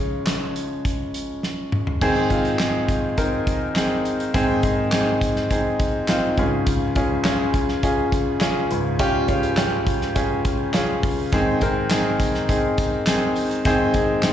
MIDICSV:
0, 0, Header, 1, 3, 480
1, 0, Start_track
1, 0, Key_signature, -4, "major"
1, 0, Tempo, 582129
1, 1661, Time_signature, 4, 2, 24, 8
1, 11815, End_track
2, 0, Start_track
2, 0, Title_t, "Grand piano"
2, 0, Program_c, 0, 0
2, 0, Control_c, 0, 64, 127
2, 0, Note_on_c, 0, 49, 43
2, 0, Note_on_c, 0, 53, 38
2, 0, Note_on_c, 0, 56, 54
2, 0, Note_on_c, 0, 61, 50
2, 0, Note_on_c, 0, 73, 61
2, 1662, Note_on_c, 0, 44, 66
2, 1662, Note_on_c, 0, 51, 67
2, 1663, Note_on_c, 0, 60, 97
2, 1663, Note_on_c, 0, 68, 118
2, 1664, Note_on_c, 0, 63, 90
2, 1674, Note_off_c, 0, 49, 0
2, 1674, Control_c, 0, 64, 0
2, 1675, Note_off_c, 0, 73, 0
2, 1676, Note_off_c, 0, 53, 0
2, 1676, Note_off_c, 0, 61, 0
2, 1679, Note_off_c, 0, 56, 0
2, 1835, Control_c, 0, 64, 127
2, 1879, Note_off_c, 0, 60, 0
2, 1879, Note_off_c, 0, 68, 0
2, 1880, Note_off_c, 0, 63, 0
2, 1902, Note_on_c, 0, 60, 64
2, 1902, Note_on_c, 0, 63, 56
2, 1903, Note_on_c, 0, 65, 75
2, 2119, Note_off_c, 0, 60, 0
2, 2119, Note_off_c, 0, 63, 0
2, 2119, Note_off_c, 0, 65, 0
2, 2145, Note_on_c, 0, 68, 81
2, 2146, Note_on_c, 0, 60, 75
2, 2146, Note_on_c, 0, 63, 61
2, 2577, Note_off_c, 0, 68, 0
2, 2578, Note_off_c, 0, 60, 0
2, 2578, Note_off_c, 0, 63, 0
2, 2619, Note_on_c, 0, 60, 62
2, 2621, Note_on_c, 0, 70, 76
2, 2622, Note_on_c, 0, 63, 65
2, 3054, Note_off_c, 0, 60, 0
2, 3055, Note_off_c, 0, 70, 0
2, 3056, Note_off_c, 0, 63, 0
2, 3100, Note_on_c, 0, 60, 74
2, 3100, Note_on_c, 0, 63, 68
2, 3101, Note_on_c, 0, 68, 80
2, 3534, Note_off_c, 0, 60, 0
2, 3535, Note_off_c, 0, 63, 0
2, 3535, Note_off_c, 0, 68, 0
2, 3548, Note_off_c, 0, 44, 0
2, 3548, Note_off_c, 0, 51, 0
2, 3580, Note_on_c, 0, 51, 67
2, 3580, Note_on_c, 0, 60, 107
2, 3580, Note_on_c, 0, 63, 91
2, 3580, Note_on_c, 0, 68, 115
2, 3581, Note_on_c, 0, 44, 73
2, 3797, Note_off_c, 0, 63, 0
2, 3797, Note_off_c, 0, 68, 0
2, 3798, Note_off_c, 0, 60, 0
2, 3821, Note_on_c, 0, 60, 67
2, 3821, Note_on_c, 0, 63, 64
2, 3821, Note_on_c, 0, 68, 75
2, 4038, Note_off_c, 0, 60, 0
2, 4038, Note_off_c, 0, 63, 0
2, 4038, Note_off_c, 0, 68, 0
2, 4058, Note_on_c, 0, 60, 71
2, 4060, Note_on_c, 0, 63, 66
2, 4060, Note_on_c, 0, 68, 87
2, 4493, Note_off_c, 0, 60, 0
2, 4494, Note_off_c, 0, 63, 0
2, 4494, Note_off_c, 0, 68, 0
2, 4542, Note_on_c, 0, 60, 65
2, 4542, Note_on_c, 0, 63, 68
2, 4542, Note_on_c, 0, 68, 84
2, 4975, Note_off_c, 0, 60, 0
2, 4975, Note_off_c, 0, 63, 0
2, 4975, Note_off_c, 0, 68, 0
2, 5022, Note_on_c, 0, 63, 78
2, 5024, Note_on_c, 0, 60, 82
2, 5024, Note_on_c, 0, 65, 82
2, 5227, Note_off_c, 0, 44, 0
2, 5227, Note_off_c, 0, 51, 0
2, 5252, Note_off_c, 0, 65, 0
2, 5261, Note_off_c, 0, 63, 0
2, 5262, Note_off_c, 0, 60, 0
2, 5264, Note_on_c, 0, 44, 64
2, 5264, Note_on_c, 0, 61, 69
2, 5265, Note_on_c, 0, 37, 65
2, 5265, Note_on_c, 0, 65, 66
2, 5265, Note_on_c, 0, 68, 84
2, 5271, Control_c, 0, 64, 0
2, 5405, Control_c, 0, 64, 127
2, 5696, Note_off_c, 0, 61, 0
2, 5696, Note_off_c, 0, 65, 0
2, 5696, Note_off_c, 0, 68, 0
2, 5741, Note_on_c, 0, 61, 69
2, 5743, Note_on_c, 0, 65, 62
2, 5743, Note_on_c, 0, 68, 77
2, 5958, Note_off_c, 0, 61, 0
2, 5958, Note_off_c, 0, 65, 0
2, 5958, Note_off_c, 0, 68, 0
2, 5981, Note_on_c, 0, 65, 75
2, 5982, Note_on_c, 0, 61, 77
2, 5982, Note_on_c, 0, 68, 84
2, 6414, Note_off_c, 0, 65, 0
2, 6415, Note_off_c, 0, 61, 0
2, 6415, Note_off_c, 0, 68, 0
2, 6461, Note_on_c, 0, 65, 68
2, 6462, Note_on_c, 0, 61, 72
2, 6463, Note_on_c, 0, 68, 86
2, 6894, Note_off_c, 0, 65, 0
2, 6895, Note_off_c, 0, 61, 0
2, 6895, Note_off_c, 0, 68, 0
2, 6937, Note_on_c, 0, 61, 79
2, 6937, Note_on_c, 0, 68, 79
2, 6938, Note_on_c, 0, 65, 69
2, 7148, Note_off_c, 0, 44, 0
2, 7149, Note_off_c, 0, 37, 0
2, 7181, Note_on_c, 0, 37, 62
2, 7181, Note_on_c, 0, 44, 64
2, 7372, Note_off_c, 0, 61, 0
2, 7372, Note_off_c, 0, 68, 0
2, 7373, Note_off_c, 0, 65, 0
2, 7417, Note_on_c, 0, 65, 98
2, 7418, Note_on_c, 0, 61, 104
2, 7418, Note_on_c, 0, 67, 119
2, 7635, Note_off_c, 0, 65, 0
2, 7636, Note_off_c, 0, 61, 0
2, 7636, Note_off_c, 0, 67, 0
2, 7655, Note_on_c, 0, 61, 72
2, 7656, Note_on_c, 0, 65, 63
2, 7657, Note_on_c, 0, 68, 72
2, 7874, Note_off_c, 0, 61, 0
2, 7875, Note_off_c, 0, 65, 0
2, 7875, Note_off_c, 0, 68, 0
2, 7895, Note_on_c, 0, 61, 74
2, 7895, Note_on_c, 0, 65, 66
2, 7896, Note_on_c, 0, 67, 83
2, 8331, Note_off_c, 0, 61, 0
2, 8331, Note_off_c, 0, 65, 0
2, 8332, Note_off_c, 0, 67, 0
2, 8374, Note_on_c, 0, 61, 72
2, 8374, Note_on_c, 0, 65, 60
2, 8376, Note_on_c, 0, 68, 74
2, 8810, Note_off_c, 0, 61, 0
2, 8811, Note_off_c, 0, 65, 0
2, 8811, Note_off_c, 0, 68, 0
2, 8857, Note_on_c, 0, 61, 73
2, 8857, Note_on_c, 0, 65, 75
2, 8857, Note_on_c, 0, 68, 83
2, 9066, Note_off_c, 0, 37, 0
2, 9066, Note_off_c, 0, 44, 0
2, 9292, Note_off_c, 0, 61, 0
2, 9292, Note_off_c, 0, 65, 0
2, 9292, Note_off_c, 0, 68, 0
2, 9341, Note_on_c, 0, 60, 98
2, 9342, Note_on_c, 0, 44, 68
2, 9342, Note_on_c, 0, 63, 86
2, 9342, Note_on_c, 0, 68, 106
2, 9343, Note_on_c, 0, 51, 70
2, 9347, Control_c, 0, 64, 0
2, 9500, Control_c, 0, 64, 127
2, 9557, Note_off_c, 0, 60, 0
2, 9557, Note_off_c, 0, 63, 0
2, 9557, Note_off_c, 0, 68, 0
2, 9582, Note_on_c, 0, 63, 62
2, 9583, Note_on_c, 0, 60, 71
2, 9584, Note_on_c, 0, 70, 75
2, 9797, Note_off_c, 0, 60, 0
2, 9797, Note_off_c, 0, 63, 0
2, 9798, Note_off_c, 0, 70, 0
2, 9821, Note_on_c, 0, 60, 73
2, 9822, Note_on_c, 0, 68, 86
2, 9823, Note_on_c, 0, 63, 68
2, 10254, Note_off_c, 0, 60, 0
2, 10254, Note_off_c, 0, 63, 0
2, 10254, Note_off_c, 0, 68, 0
2, 10299, Note_on_c, 0, 63, 63
2, 10300, Note_on_c, 0, 60, 69
2, 10301, Note_on_c, 0, 68, 85
2, 10732, Note_off_c, 0, 63, 0
2, 10733, Note_off_c, 0, 60, 0
2, 10733, Note_off_c, 0, 68, 0
2, 10781, Note_on_c, 0, 60, 80
2, 10781, Note_on_c, 0, 68, 90
2, 10782, Note_on_c, 0, 63, 67
2, 11213, Note_off_c, 0, 60, 0
2, 11213, Note_off_c, 0, 68, 0
2, 11214, Note_off_c, 0, 63, 0
2, 11226, Note_off_c, 0, 44, 0
2, 11227, Note_off_c, 0, 51, 0
2, 11262, Note_on_c, 0, 44, 71
2, 11262, Note_on_c, 0, 51, 69
2, 11262, Note_on_c, 0, 60, 110
2, 11262, Note_on_c, 0, 63, 101
2, 11262, Note_on_c, 0, 68, 107
2, 11477, Note_off_c, 0, 60, 0
2, 11477, Note_off_c, 0, 63, 0
2, 11477, Note_off_c, 0, 68, 0
2, 11503, Note_on_c, 0, 60, 69
2, 11503, Note_on_c, 0, 63, 66
2, 11504, Note_on_c, 0, 68, 81
2, 11717, Note_off_c, 0, 60, 0
2, 11717, Note_off_c, 0, 63, 0
2, 11718, Note_off_c, 0, 68, 0
2, 11742, Note_on_c, 0, 60, 79
2, 11742, Note_on_c, 0, 68, 82
2, 11743, Note_on_c, 0, 63, 70
2, 11815, Note_off_c, 0, 44, 0
2, 11815, Note_off_c, 0, 51, 0
2, 11815, Note_off_c, 0, 60, 0
2, 11815, Note_off_c, 0, 63, 0
2, 11815, Note_off_c, 0, 68, 0
2, 11815, End_track
3, 0, Start_track
3, 0, Title_t, "Drums"
3, 215, Note_on_c, 9, 39, 79
3, 221, Note_on_c, 9, 42, 75
3, 222, Note_on_c, 9, 38, 98
3, 297, Note_off_c, 9, 39, 0
3, 303, Note_off_c, 9, 42, 0
3, 304, Note_off_c, 9, 38, 0
3, 461, Note_on_c, 9, 42, 70
3, 543, Note_off_c, 9, 42, 0
3, 700, Note_on_c, 9, 42, 75
3, 701, Note_on_c, 9, 36, 72
3, 783, Note_off_c, 9, 42, 0
3, 784, Note_off_c, 9, 36, 0
3, 942, Note_on_c, 9, 42, 71
3, 1025, Note_off_c, 9, 42, 0
3, 1182, Note_on_c, 9, 38, 47
3, 1264, Note_off_c, 9, 38, 0
3, 1421, Note_on_c, 9, 45, 75
3, 1503, Note_off_c, 9, 45, 0
3, 1542, Note_on_c, 9, 43, 72
3, 1625, Note_off_c, 9, 43, 0
3, 1661, Note_on_c, 9, 36, 98
3, 1661, Note_on_c, 9, 49, 84
3, 1744, Note_off_c, 9, 36, 0
3, 1744, Note_off_c, 9, 49, 0
3, 1897, Note_on_c, 9, 42, 62
3, 1901, Note_on_c, 9, 36, 72
3, 1980, Note_off_c, 9, 42, 0
3, 1983, Note_off_c, 9, 36, 0
3, 2019, Note_on_c, 9, 42, 42
3, 2102, Note_off_c, 9, 42, 0
3, 2135, Note_on_c, 9, 39, 80
3, 2141, Note_on_c, 9, 38, 92
3, 2141, Note_on_c, 9, 42, 72
3, 2217, Note_off_c, 9, 39, 0
3, 2223, Note_off_c, 9, 42, 0
3, 2224, Note_off_c, 9, 38, 0
3, 2379, Note_on_c, 9, 36, 80
3, 2380, Note_on_c, 9, 42, 73
3, 2461, Note_off_c, 9, 36, 0
3, 2462, Note_off_c, 9, 42, 0
3, 2619, Note_on_c, 9, 42, 80
3, 2621, Note_on_c, 9, 36, 73
3, 2701, Note_off_c, 9, 42, 0
3, 2703, Note_off_c, 9, 36, 0
3, 2861, Note_on_c, 9, 36, 83
3, 2862, Note_on_c, 9, 42, 67
3, 2944, Note_off_c, 9, 36, 0
3, 2944, Note_off_c, 9, 42, 0
3, 3096, Note_on_c, 9, 39, 77
3, 3100, Note_on_c, 9, 42, 76
3, 3103, Note_on_c, 9, 38, 89
3, 3179, Note_off_c, 9, 39, 0
3, 3183, Note_off_c, 9, 42, 0
3, 3186, Note_off_c, 9, 38, 0
3, 3342, Note_on_c, 9, 42, 53
3, 3424, Note_off_c, 9, 42, 0
3, 3464, Note_on_c, 9, 42, 53
3, 3546, Note_off_c, 9, 42, 0
3, 3582, Note_on_c, 9, 36, 114
3, 3583, Note_on_c, 9, 42, 94
3, 3664, Note_off_c, 9, 36, 0
3, 3666, Note_off_c, 9, 42, 0
3, 3818, Note_on_c, 9, 42, 63
3, 3821, Note_on_c, 9, 36, 70
3, 3900, Note_off_c, 9, 42, 0
3, 3903, Note_off_c, 9, 36, 0
3, 4055, Note_on_c, 9, 39, 86
3, 4061, Note_on_c, 9, 42, 78
3, 4062, Note_on_c, 9, 38, 93
3, 4137, Note_off_c, 9, 39, 0
3, 4143, Note_off_c, 9, 42, 0
3, 4144, Note_off_c, 9, 38, 0
3, 4299, Note_on_c, 9, 36, 82
3, 4303, Note_on_c, 9, 42, 81
3, 4382, Note_off_c, 9, 36, 0
3, 4385, Note_off_c, 9, 42, 0
3, 4420, Note_on_c, 9, 38, 33
3, 4502, Note_off_c, 9, 38, 0
3, 4539, Note_on_c, 9, 42, 80
3, 4541, Note_on_c, 9, 36, 70
3, 4622, Note_off_c, 9, 42, 0
3, 4623, Note_off_c, 9, 36, 0
3, 4778, Note_on_c, 9, 42, 71
3, 4780, Note_on_c, 9, 36, 88
3, 4861, Note_off_c, 9, 42, 0
3, 4862, Note_off_c, 9, 36, 0
3, 5013, Note_on_c, 9, 39, 74
3, 5017, Note_on_c, 9, 42, 83
3, 5020, Note_on_c, 9, 38, 91
3, 5096, Note_off_c, 9, 39, 0
3, 5100, Note_off_c, 9, 42, 0
3, 5103, Note_off_c, 9, 38, 0
3, 5256, Note_on_c, 9, 42, 58
3, 5257, Note_on_c, 9, 36, 82
3, 5338, Note_off_c, 9, 42, 0
3, 5340, Note_off_c, 9, 36, 0
3, 5496, Note_on_c, 9, 42, 94
3, 5498, Note_on_c, 9, 36, 106
3, 5579, Note_off_c, 9, 42, 0
3, 5581, Note_off_c, 9, 36, 0
3, 5735, Note_on_c, 9, 42, 63
3, 5739, Note_on_c, 9, 36, 76
3, 5817, Note_off_c, 9, 42, 0
3, 5821, Note_off_c, 9, 36, 0
3, 5972, Note_on_c, 9, 39, 88
3, 5978, Note_on_c, 9, 42, 71
3, 5979, Note_on_c, 9, 38, 95
3, 6054, Note_off_c, 9, 39, 0
3, 6060, Note_off_c, 9, 42, 0
3, 6061, Note_off_c, 9, 38, 0
3, 6216, Note_on_c, 9, 36, 87
3, 6218, Note_on_c, 9, 42, 74
3, 6298, Note_off_c, 9, 36, 0
3, 6300, Note_off_c, 9, 42, 0
3, 6337, Note_on_c, 9, 38, 32
3, 6419, Note_off_c, 9, 38, 0
3, 6457, Note_on_c, 9, 42, 76
3, 6458, Note_on_c, 9, 36, 72
3, 6539, Note_off_c, 9, 42, 0
3, 6541, Note_off_c, 9, 36, 0
3, 6697, Note_on_c, 9, 42, 72
3, 6698, Note_on_c, 9, 36, 79
3, 6780, Note_off_c, 9, 42, 0
3, 6781, Note_off_c, 9, 36, 0
3, 6930, Note_on_c, 9, 39, 76
3, 6934, Note_on_c, 9, 42, 85
3, 6937, Note_on_c, 9, 38, 96
3, 7012, Note_off_c, 9, 39, 0
3, 7016, Note_off_c, 9, 42, 0
3, 7019, Note_off_c, 9, 38, 0
3, 7178, Note_on_c, 9, 42, 56
3, 7260, Note_off_c, 9, 42, 0
3, 7414, Note_on_c, 9, 42, 89
3, 7417, Note_on_c, 9, 36, 103
3, 7497, Note_off_c, 9, 42, 0
3, 7499, Note_off_c, 9, 36, 0
3, 7654, Note_on_c, 9, 42, 64
3, 7657, Note_on_c, 9, 36, 68
3, 7736, Note_off_c, 9, 42, 0
3, 7740, Note_off_c, 9, 36, 0
3, 7776, Note_on_c, 9, 42, 48
3, 7858, Note_off_c, 9, 42, 0
3, 7889, Note_on_c, 9, 39, 74
3, 7895, Note_on_c, 9, 42, 82
3, 7896, Note_on_c, 9, 38, 105
3, 7972, Note_off_c, 9, 39, 0
3, 7977, Note_off_c, 9, 42, 0
3, 7978, Note_off_c, 9, 38, 0
3, 8135, Note_on_c, 9, 36, 82
3, 8136, Note_on_c, 9, 42, 77
3, 8218, Note_off_c, 9, 36, 0
3, 8218, Note_off_c, 9, 42, 0
3, 8256, Note_on_c, 9, 38, 33
3, 8338, Note_off_c, 9, 38, 0
3, 8375, Note_on_c, 9, 42, 83
3, 8377, Note_on_c, 9, 36, 75
3, 8458, Note_off_c, 9, 42, 0
3, 8459, Note_off_c, 9, 36, 0
3, 8615, Note_on_c, 9, 42, 69
3, 8617, Note_on_c, 9, 36, 87
3, 8697, Note_off_c, 9, 42, 0
3, 8700, Note_off_c, 9, 36, 0
3, 8852, Note_on_c, 9, 39, 67
3, 8855, Note_on_c, 9, 42, 87
3, 8858, Note_on_c, 9, 38, 91
3, 8934, Note_off_c, 9, 39, 0
3, 8938, Note_off_c, 9, 42, 0
3, 8941, Note_off_c, 9, 38, 0
3, 9098, Note_on_c, 9, 36, 85
3, 9100, Note_on_c, 9, 46, 58
3, 9180, Note_off_c, 9, 36, 0
3, 9183, Note_off_c, 9, 46, 0
3, 9334, Note_on_c, 9, 54, 40
3, 9339, Note_on_c, 9, 36, 115
3, 9340, Note_on_c, 9, 42, 91
3, 9417, Note_off_c, 9, 54, 0
3, 9421, Note_off_c, 9, 36, 0
3, 9422, Note_off_c, 9, 42, 0
3, 9570, Note_on_c, 9, 54, 29
3, 9575, Note_on_c, 9, 42, 60
3, 9579, Note_on_c, 9, 36, 71
3, 9653, Note_off_c, 9, 54, 0
3, 9658, Note_off_c, 9, 42, 0
3, 9661, Note_off_c, 9, 36, 0
3, 9811, Note_on_c, 9, 54, 78
3, 9813, Note_on_c, 9, 39, 79
3, 9819, Note_on_c, 9, 42, 78
3, 9820, Note_on_c, 9, 38, 105
3, 9893, Note_off_c, 9, 54, 0
3, 9896, Note_off_c, 9, 39, 0
3, 9902, Note_off_c, 9, 42, 0
3, 9903, Note_off_c, 9, 38, 0
3, 10057, Note_on_c, 9, 36, 79
3, 10058, Note_on_c, 9, 42, 76
3, 10059, Note_on_c, 9, 54, 40
3, 10139, Note_off_c, 9, 36, 0
3, 10141, Note_off_c, 9, 42, 0
3, 10142, Note_off_c, 9, 54, 0
3, 10178, Note_on_c, 9, 38, 33
3, 10260, Note_off_c, 9, 38, 0
3, 10298, Note_on_c, 9, 42, 78
3, 10299, Note_on_c, 9, 36, 82
3, 10381, Note_off_c, 9, 36, 0
3, 10381, Note_off_c, 9, 42, 0
3, 10534, Note_on_c, 9, 54, 46
3, 10539, Note_on_c, 9, 36, 86
3, 10539, Note_on_c, 9, 42, 73
3, 10617, Note_off_c, 9, 54, 0
3, 10621, Note_off_c, 9, 36, 0
3, 10621, Note_off_c, 9, 42, 0
3, 10770, Note_on_c, 9, 54, 80
3, 10772, Note_on_c, 9, 39, 74
3, 10776, Note_on_c, 9, 42, 93
3, 10779, Note_on_c, 9, 38, 99
3, 10852, Note_off_c, 9, 54, 0
3, 10855, Note_off_c, 9, 39, 0
3, 10858, Note_off_c, 9, 42, 0
3, 10861, Note_off_c, 9, 38, 0
3, 11013, Note_on_c, 9, 54, 41
3, 11019, Note_on_c, 9, 46, 60
3, 11095, Note_off_c, 9, 54, 0
3, 11101, Note_off_c, 9, 46, 0
3, 11141, Note_on_c, 9, 42, 52
3, 11223, Note_off_c, 9, 42, 0
3, 11255, Note_on_c, 9, 54, 44
3, 11256, Note_on_c, 9, 42, 96
3, 11258, Note_on_c, 9, 36, 112
3, 11338, Note_off_c, 9, 42, 0
3, 11338, Note_off_c, 9, 54, 0
3, 11340, Note_off_c, 9, 36, 0
3, 11492, Note_on_c, 9, 42, 66
3, 11495, Note_on_c, 9, 54, 31
3, 11497, Note_on_c, 9, 36, 74
3, 11575, Note_off_c, 9, 42, 0
3, 11577, Note_off_c, 9, 54, 0
3, 11580, Note_off_c, 9, 36, 0
3, 11729, Note_on_c, 9, 39, 81
3, 11733, Note_on_c, 9, 54, 79
3, 11735, Note_on_c, 9, 42, 76
3, 11736, Note_on_c, 9, 38, 101
3, 11812, Note_off_c, 9, 39, 0
3, 11815, Note_off_c, 9, 38, 0
3, 11815, Note_off_c, 9, 42, 0
3, 11815, Note_off_c, 9, 54, 0
3, 11815, End_track
0, 0, End_of_file